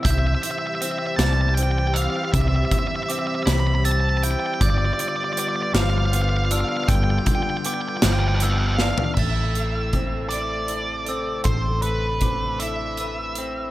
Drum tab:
CC |------------|------------|------------|------------|
HH |x-x-x-x-x-x-|x-x-x-x-x-x-|x-x-x-x-x-x-|x-x-x-x-x---|
SD |------o-----|------o-----|------o-----|------o---o-|
FT |------------|------------|------------|-----------o|
BD |o-----------|o-o---------|o-----------|o-o---------|

CC |x-----------|------------|
HH |--x-x-x-x-x-|x-x-x-x-x-x-|
SD |------------|------------|
FT |------------|------------|
BD |o---o-------|o---o-------|